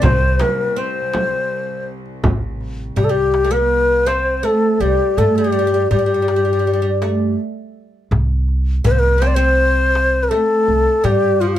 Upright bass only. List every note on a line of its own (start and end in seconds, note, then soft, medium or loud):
0.03 0.38 C2 loud
2.24 2.93 A1 medium
2.97 4.40 C2 medium
4.80 4.98 C2 medium
5.17 5.87 G2 medium
5.91 7.34 G2 medium
8.11 8.81 C2 medium
8.85 10.28 C2 loud
10.68 10.85 C2 medium
11.04 11.59 G2 medium